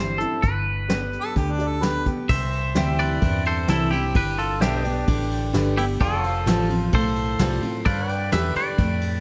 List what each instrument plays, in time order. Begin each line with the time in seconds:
Already playing: fingered electric bass G1, steel-string acoustic guitar G2 E3 G3, upright piano E4 G4 C5, clean electric guitar C5
0.00 steel-string acoustic guitar C4 E4
0.18 steel-string acoustic guitar C4 E4, clean electric guitar A4, closed hi-hat
0.42 fingered electric bass G1, steel-string acoustic guitar G2, clean electric guitar B4, kick, closed hi-hat
0.88 steel-string acoustic guitar D3 G3 B3 G4, upright piano D4 G4 B4, snare, closed hi-hat
1.13 closed hi-hat
1.21 harmonica A4
1.36 fingered electric bass D2, steel-string acoustic guitar D3, harmonica G4, kick, closed hi-hat
1.52 harmonica D4
1.57 upright piano D4 G4 D5, closed hi-hat
1.68 harmonica A4
1.80 steel-string acoustic guitar D3 G3 B3 G4, upright piano D4 G4 A4, harmonica B4, snare, closed hi-hat
2.06 steel-string acoustic guitar B3 G4, kick, closed hi-hat
2.29 fingered electric bass C2, steel-string acoustic guitar C3, clean electric guitar C5 E5, kick, crash
2.53 ride
2.75 fingered electric bass D2, steel-string acoustic guitar E3 G3 C4 E4, pedal steel guitar C4 E5 G5, upright piano E4 G4 C5, snare, ride
2.98 clean electric guitar B4 D5, ride
3.21 fingered electric bass E2, steel-string acoustic guitar G2, kick, ride
3.45 clean electric guitar A4 C5, ride
3.68 fingered electric bass C2, steel-string acoustic guitar E3 G3 C4 E4, upright piano E4 G4 C5, clean electric guitar E4 A4, snare, ride
3.91 steel-string acoustic guitar C4 E4, clean electric guitar E4 G4, ride
4.15 fingered electric bass G1, steel-string acoustic guitar G2, clean electric guitar G4 B4, kick, ride
4.38 clean electric guitar F4 A4, ride
4.60 fingered electric bass B1, steel-string acoustic guitar D3 G3 B3 G4, upright piano D4 G4 B4, clean electric guitar D4 G4, pedal steel guitar C5 E5 G5, snare, ride
4.81 steel-string acoustic guitar G4, pedal steel guitar B4, ride
4.86 steel-string acoustic guitar B3, pedal steel guitar D5
5.08 fingered electric bass A1, steel-string acoustic guitar D3, kick, ride
5.31 ride
5.53 fingered electric bass G1, steel-string acoustic guitar D3 G3 B3 G4, upright piano D4 G4 B4, snare, ride
5.77 steel-string acoustic guitar B3 G4, clean electric guitar E4 G4, ride
6.00 fingered electric bass F1, steel-string acoustic guitar F2, clean electric guitar F4 A4, pedal steel guitar A4 D5 G5, kick, ride
6.24 pedal steel guitar C5, ride
6.28 pedal steel guitar F5
6.46 fingered electric bass A1, steel-string acoustic guitar F3 G3 C4 F4, upright piano F4 A4 C5, snare, ride
6.70 steel-string acoustic guitar C4 F4, ride
6.93 fingered electric bass B1, steel-string acoustic guitar A2, clean electric guitar A4 C5, kick, ride
7.16 ride
7.39 fingered electric bass C2, steel-string acoustic guitar F3 G3 C4 F4, upright piano F4 A4 C5, snare, ride
7.62 steel-string acoustic guitar C4 F4, ride
7.85 fingered electric bass G2, steel-string acoustic guitar G2, pedal steel guitar A4 C5 F5, clean electric guitar B4 D5, kick, ride
8.09 pedal steel guitar B4 D5 G5, ride
8.32 fingered electric bass E2, steel-string acoustic guitar D3 G3 B3 G4, upright piano D4 G4 B4, clean electric guitar B4 E5, snare, ride
8.55 clean electric guitar B4 D5, muted fingered electric bass stroke, ride
8.78 fingered electric bass F2, steel-string acoustic guitar A2, kick, ride
9.01 ride